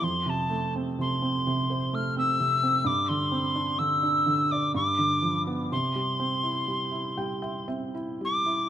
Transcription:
<<
  \new Staff \with { instrumentName = "Tin whistle" } { \time 3/4 \key c \major \tempo 4 = 62 c'''16 a''8 r16 c'''4 f'''16 e'''8. | d'''16 c'''8. e'''8. d'''16 d'''8. r16 | c'''2 r8 d'''8 | }
  \new Staff \with { instrumentName = "Felt piano" } { \time 3/4 \key c \major r2. | r2. | r4. g''16 e''16 e''4 | }
  \new Staff \with { instrumentName = "Felt piano" } { \time 3/4 \key c \major f,16 c16 a16 c'16 c16 c'16 c16 c''16 a16 c'16 c16 c'16 | g,16 d16 c'16 d'16 d16 d'16 d16 d''16 g,16 d16 f16 b16 | c16 g16 c'16 e'16 g16 e'16 g16 g''16 c'16 e'16 g16 e'16 | }
>>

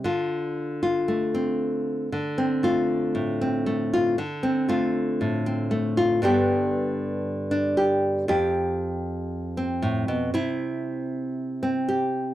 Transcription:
\new Staff \with { instrumentName = "Nylon-string guitar" } { \time 4/4 \key d \dorian \tempo 4 = 117 << { f'4. f'4 c'4. | r8 c'8 f'4. c'4 f'8 | r8 c'8 f'4. c'4 f'8 | <d b d' g'>2~ <d b d' g'>8 d'8 g'4 |
g'2~ g'8 c'4. | e'2~ e'8 c'8 g'4 | } \\ { d2 a2 | d4 a4 a,4 a4 | d4 a4 a,4 a4 | g,1 |
f,2. a,8 b,8 | c1 | } >> }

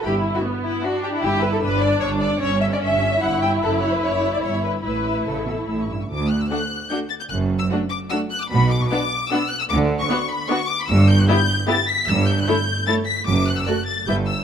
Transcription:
<<
  \new Staff \with { instrumentName = "Violin section" } { \time 3/4 \key e \minor \tempo 4 = 150 b''8 r2 r8 | \key d \major e'''16 d'''16 e'''16 d'''16 e'''16 d'''16 e'''16 d'''16 e'''16 d'''16 e'''16 d'''16 | e'''16 cis'''16 e'''16 cis'''16 e'''16 cis'''16 e'''16 cis'''16 e'''16 cis'''16 e'''16 cis'''16 | fis'''16 d'''16 fis'''16 d'''16 fis'''16 d'''16 fis'''16 d'''16 g''16 b''16 g''16 b''16 |
e'''16 cis'''16 e'''16 cis'''16 e'''16 cis'''16 e'''16 cis'''16 e'''16 cis'''16 e'''16 cis'''16 | d'''8 fis'''16 e'''16 fis'''4 g'''8 a'''16 g'''16 | fis'''8. e'''8. d'''8 e'''8 fis'''16 d'''16 | b''8 d'''16 cis'''16 d'''4 e'''8 fis'''16 e'''16 |
d'''8. cis'''8. b''8 cis'''8 d'''16 b''16 | e'''8 g'''16 fis'''16 g'''4 a'''8 b'''8 | e'''8 g'''16 fis'''16 g'''4 a'''8 b'''8 | d'''8 fis'''16 e'''16 fis'''8 a'''8 g'''8 e'''8 | }
  \new Staff \with { instrumentName = "Violin section" } { \time 3/4 \key e \minor g'8. fis'8. e'8 fis'8 g'16 e'16 | \key d \major g'8 b'16 a'16 b'8 d''8 cis''8 d''8 | cis''8 e''16 d''16 e''4 fis''8 g''8 | a'8 cis''16 b'16 cis''8. d''16 cis''8 b'8 |
b'4 a'4 r4 | r4 <fis' fis''>4 <fis' fis''>4 | r4 <fis' fis''>4 <fis' fis''>4 | r4 <fis' fis''>4 <fis' fis''>4 |
r4 <fis' fis''>4 <fis' fis''>4 | r4 <g' e''>4 <g' e''>4 | r4 <a' cis''>4 <a' cis''>4 | r4 <a' d''>4 <b' e''>4 | }
  \new Staff \with { instrumentName = "Viola section" } { \time 3/4 \key e \minor e'4 b4 d'4 | \key d \major e'4 d'2 | cis'2 e'4~ | e'2. |
e'2~ e'8 r8 | r4 <a d'>4 <a d'>4 | r4 <a d'>4 <a d'>4 | r4 <b d'>4 <b d'>4 |
r4 <b d'>4 <b d'>4 | r4 <b e'>4 <b e'>4 | r4 <a e'>4 <a e'>4 | r4 <a fis'>4 <g e'>4 | }
  \new Staff \with { instrumentName = "Cello section" } { \clef bass \time 3/4 \key e \minor g,4 r2 | \key d \major g,4 g,4 g,4 | g,4 g,4 g,4 | fis,4 fis,4 g,4 |
a,4 cis8 b,8 a,8 g,8 | d,4 r2 | fis,4 r2 | b,4 r2 |
d4 r2 | g,4 r2 | g,4 r2 | fis,4 r4 g,4 | }
  \new Staff \with { instrumentName = "Double bass section" } { \clef bass \time 3/4 \key e \minor g,,4 r2 | \key d \major g,,4 g,,4 g,,4 | g,,4 g,,4 g,,4 | fis,,4 fis,,4 g,,4 |
a,,4 a,,4 a,,4 | d,4 r2 | fis,,4 r2 | b,,4 r2 |
d,4 r2 | g,,4 r2 | g,,4 r2 | fis,,4 r4 g,,4 | }
>>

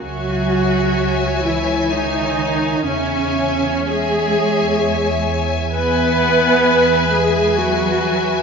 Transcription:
<<
  \new Staff \with { instrumentName = "Violin section" } { \time 3/4 \key cis \minor \tempo 4 = 64 gis''2. | gis''4 gis''2 | gis''2. | }
  \new Staff \with { instrumentName = "Violin section" } { \time 3/4 \key cis \minor <cis'' e''>2. | <cis'' e''>4 <cis'' e''>2 | <b' e''>2. | }
  \new Staff \with { instrumentName = "Viola section" } { \time 3/4 \key cis \minor fis'4. e'8 dis'4 | cis'4 gis'4. r8 | b'4. gis'8 fis'4 | }
  \new Staff \with { instrumentName = "Cello section" } { \clef bass \time 3/4 \key cis \minor fis4. e8 dis4 | cis4 gis4. r8 | b4. gis8 fis4 | }
  \new Staff \with { instrumentName = "Double bass section" } { \clef bass \time 3/4 \key cis \minor cis,2. | e,2.~ | e,2. | }
>>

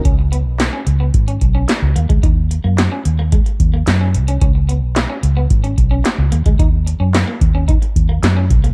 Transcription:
<<
  \new Staff \with { instrumentName = "Clean electric guitar" } { \time 4/4 \key dis \phrygian \tempo 4 = 110 cis'16 r16 b16 r8 cis'16 r16 b16 r16 cis'16 r16 cis'16 r8 ais16 gis16 | dis'16 r8 ais16 r16 cis'16 r16 ais16 gis16 r8 ais16 r16 cis'16 r16 cis'16 | cis'16 r16 b16 r8 cis'16 r16 b16 r16 cis'16 r16 cis'16 r8 ais16 gis16 | dis'16 r8 cis'16 r16 ais16 r16 cis'16 dis'16 r8 ais16 r16 cis'16 r16 ais16 | }
  \new Staff \with { instrumentName = "Fingered electric bass" } { \clef bass \time 4/4 \key dis \phrygian cis,8. b,,8 r16 cis,8 gis,,8 b,,8 r16 cis,16 dis,16 d,16 | dis,8. fis,8 r16 dis,8. r16 dis,8 fis,8 bis,,8 | cis,8. b,,8 r16 cis,8 gis,,8 b,,8 r16 cis,16 dis,16 d,16 | dis,8. fis,8 r16 dis,8. r16 dis,8 fis,8 bis,,8 | }
  \new DrumStaff \with { instrumentName = "Drums" } \drummode { \time 4/4 <hh bd>8 hh8 <hc hh sn>8 hh8 <hh bd>16 hh16 <hh bd>8 <hc hh sn>8 hh16 <hh bd>16 | <hh bd>8 hh8 <hc hh sn>8 hh8 <hh bd>16 hh16 <hh bd>8 <hc hh sn>8 hh16 hh16 | <hh bd>8 hh8 <hc hh sn>8 hh8 <hh bd>16 hh16 <hh bd>8 <hc hh sn>8 hh16 <hh bd>16 | <hh bd>8 hh8 <hc hh sn>8 <hh bd>8 <hh bd>16 hh16 <hh bd>8 <hc hh sn>8 <hh bd>16 hh16 | }
>>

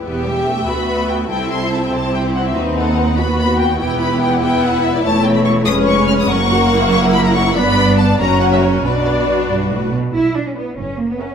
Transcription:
<<
  \new Staff \with { instrumentName = "Violin section" } { \time 6/8 \key e \minor \tempo 4. = 95 r8 g''4 b''8 b''8 g''8 | g''8 c'''8 a''16 g''16 a''8 g''8 fis''16 e''16 | r8 fis''4 b''8 b''8 g''8 | g''8 b''8 g''16 fis''16 g''8 fis''8 e''16 d''16 |
\key b \minor a''8 g''16 b''16 cis'''8 dis'''8 cis'''8 eis'''16 dis'''16 | cis'''4. cis'''8 b''16 ais''16 cis'''8 | b''4 a''8 ais''8 fis''16 e''16 cis''8 | d''4. r4. |
r4 d''8 r4 fis''8 | }
  \new Staff \with { instrumentName = "Violin section" } { \time 6/8 \key e \minor << { e''2. | e''4. c''4. | b'2. | b'4. e''4. |
\key b \minor cis''4. cis''4. | fis''2. | d''4. cis''4. | b'2~ b'8 r8 |
r4 b'8 r4 e''8 | } \\ { g'4. b'4. | a'4. g'4. | fis'8 a'8 b'8 fis'4. | g'4. b'4. |
cis''4. b'4. | ais'4. ais'4. | d''4. ais'4. | b'2~ b'8 r8 |
r2. | } >> }
  \new Staff \with { instrumentName = "Viola section" } { \time 6/8 \key e \minor << { g'4. fis'4. | e'4. e'4. | dis'4. fis'4. | e'2.~ |
\key b \minor e'4. cis'4. | cis'8 fis'8 e'2 | d'4. fis'4. | fis'2~ fis'8 r8 |
r2. | } \\ { b8 g8 a8 b4. | c'2.~ | c'4. b4. | b4. b4. |
a4. gis4. | ais2. | b4. cis'4. | d'2~ d'8 r8 |
r4 b'8 r4 ais'8 | } >> }
  \new Staff \with { instrumentName = "Cello section" } { \clef bass \time 6/8 \key e \minor e,4. d,4. | c,4. c,4. | dis,2. | e,2. |
\key b \minor e,4. eis,4. | fis,2. | g,4. fis,4. | b,4. g,8 a,8 b,8 |
e'8 d'16 cis'16 b8 cis'8 ais16 b16 cis'8 | }
  \new Staff \with { instrumentName = "Double bass section" } { \clef bass \time 6/8 \key e \minor e,,4. d,4. | c,4. c,4. | dis,2. | e,,2. |
\key b \minor e,,4. eis,,4. | fis,,2. | g,,4. fis,,4. | b,,2~ b,,8 r8 |
b,,4. fis,,4. | }
>>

